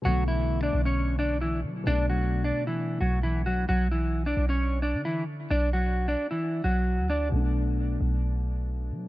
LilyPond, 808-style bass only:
\new Staff \with { instrumentName = "808-style bass" } { \clef bass \time 4/4 \key b \minor \tempo 4 = 132 b,,4. b,,2 fis8 | b,,4. r4 b,,4. | b,,4. b,,4~ b,,16 d4~ d16 | b,,4. r4 b,,8. d,8. |
b,,4. b,,2 fis8 | }